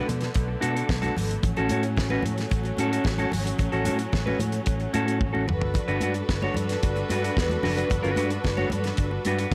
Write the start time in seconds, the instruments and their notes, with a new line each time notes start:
Already playing: string section D3 A3 B3
0.08 fingered electric bass B2, muted clean electric guitar stroke, closed hi-hat, high conga, low conga
0.21 muted clean electric guitar stroke, snare, closed hi-hat
0.34 fingered electric bass B1, muted clean electric guitar stroke, kick, closed hi-hat
0.48 muted clean electric guitar stroke
0.61 fingered electric bass B2, clean electric guitar D4 F#4 A4, closed hi-hat, high conga
0.75 clean electric guitar D4 F#4 A4, closed hi-hat
0.89 fingered electric bass B1, muted clean electric guitar stroke, kick, snare, muted conga
1.02 clean electric guitar D4 F#4 A4, closed hi-hat, muted conga, high conga
1.16 fingered electric bass G#1, muted clean electric guitar stroke, open hi-hat, low conga
1.29 muted clean electric guitar stroke, closed hi-hat
1.43 fingered electric bass A1, string section F#3 C#4, muted clean electric guitar stroke, kick, closed hi-hat, muted conga, low conga
1.56 fingered electric bass A1, clean electric guitar C#4 F#4 A4, closed hi-hat, muted conga
1.69 fingered electric bass A2, clean electric guitar C#4 F#4 A4, closed hi-hat, high conga
1.83 muted clean electric guitar stroke, closed hi-hat
1.97 fingered electric bass A1, muted clean electric guitar stroke, kick, snare, muted conga
2.10 clean electric guitar C#4 F#4 B4, high conga
2.22 fingered electric bass A2, muted clean electric guitar stroke, closed hi-hat, high conga, low conga
2.38 muted clean electric guitar stroke, snare, closed hi-hat
2.50 fingered electric bass A1, muted clean electric guitar stroke, kick, closed hi-hat, muted conga
2.63 muted clean electric guitar stroke, closed hi-hat, muted conga
2.77 fingered electric bass A2, clean electric guitar C#4 F#4 A4, closed hi-hat, high conga
2.92 clean electric guitar C#4 F#4 A4, closed hi-hat
3.04 fingered electric bass A1, kick, snare, muted conga
3.18 clean electric guitar C#4 F#4 A4, closed hi-hat, muted conga, high conga
3.32 fingered electric bass G#1, muted clean electric guitar stroke, open hi-hat, low conga
3.46 muted clean electric guitar stroke, closed hi-hat
3.59 fingered electric bass A1, muted clean electric guitar stroke, kick, closed hi-hat, muted conga, low conga
3.72 fingered electric bass A1, clean electric guitar C#4 F#4 A4, closed hi-hat
3.85 fingered electric bass A2, clean electric guitar C#4 F#4 A4, closed hi-hat, high conga
3.99 muted clean electric guitar stroke, closed hi-hat
4.12 fingered electric bass A1, muted clean electric guitar stroke, kick, snare, muted conga
4.26 clean electric guitar C#4 F#4 B4, high conga
4.39 fingered electric bass A2, muted clean electric guitar stroke, closed hi-hat, high conga, low conga
4.52 muted clean electric guitar stroke, closed hi-hat
4.66 fingered electric bass A1, muted clean electric guitar stroke, kick, closed hi-hat, muted conga
4.80 muted clean electric guitar stroke, closed hi-hat, muted conga
4.93 fingered electric bass A2, clean electric guitar C#4 F#4 A4, closed hi-hat, high conga
5.06 clean electric guitar C#4 F#4 A4, closed hi-hat
5.20 fingered electric bass A1, muted clean electric guitar stroke, kick, high tom
5.33 clean electric guitar C#4 F#4 A4, high conga
5.46 fingered electric bass G1, string section G3 D4 F#4 A4 B4, muted clean electric guitar stroke, mid tom, low conga
5.61 muted clean electric guitar stroke, floor tom
5.74 muted clean electric guitar stroke, kick, closed hi-hat, muted conga, low conga
5.88 fingered electric bass G1, clean electric guitar D4 F#4 B4, closed hi-hat
6.01 fingered electric bass G2, clean electric guitar D4 F#4 B4, closed hi-hat, high conga
6.14 muted clean electric guitar stroke, closed hi-hat
6.29 fingered electric bass G1, muted clean electric guitar stroke, kick, snare, muted conga
6.42 clean electric guitar D4 F#4 C#5, muted conga, high conga
6.54 fingered electric bass G2, muted clean electric guitar stroke, closed hi-hat, high conga, low conga
6.69 muted clean electric guitar stroke, snare, closed hi-hat
6.83 fingered electric bass G1, muted clean electric guitar stroke, kick, closed hi-hat
6.96 muted clean electric guitar stroke, closed hi-hat, muted conga
7.09 fingered electric bass G2, clean electric guitar D4 F#4 B4, closed hi-hat, high conga
7.24 clean electric guitar D4 F#4 B4, closed hi-hat
7.37 fingered electric bass E2, muted clean electric guitar stroke, kick, snare
7.50 muted clean electric guitar stroke, closed hi-hat, muted conga, high conga
7.63 fingered electric bass F#1, clean electric guitar D4 F#4 B4, open hi-hat, low conga
7.77 clean electric guitar D4 F#4 B4, closed hi-hat
7.90 fingered electric bass G1, muted clean electric guitar stroke, kick, closed hi-hat, muted conga, low conga
8.03 fingered electric bass G1, clean electric guitar D4 F#4 B4, closed hi-hat, muted conga
8.16 fingered electric bass G2, clean electric guitar D4 F#4 B4, closed hi-hat, high conga
8.30 muted clean electric guitar stroke, closed hi-hat
8.44 fingered electric bass G1, muted clean electric guitar stroke, kick, snare, muted conga
8.57 clean electric guitar D4 F#4 C#5, high conga
8.70 fingered electric bass G2, muted clean electric guitar stroke, closed hi-hat, high conga, low conga
8.84 muted clean electric guitar stroke, snare, closed hi-hat
8.97 fingered electric bass G1, muted clean electric guitar stroke, kick, closed hi-hat
9.11 muted clean electric guitar stroke, muted conga
9.25 fingered electric bass G2, clean electric guitar D4 F#4 B4, closed hi-hat, high conga
9.39 clean electric guitar D4 F#4 B4, closed hi-hat